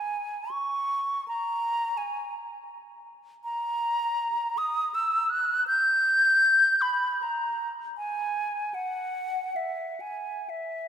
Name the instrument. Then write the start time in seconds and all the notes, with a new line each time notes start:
flute
Already playing: G#5
0.51 C#6
1.28 A#5
1.97 G#5
3.44 A#5
4.58 D#6
4.94 E6
5.30 F#6
5.67 G6
6.81 B5
7.22 A#5
7.97 G#5
8.74 F#5
9.56 E5
10.00 G#5
10.49 E5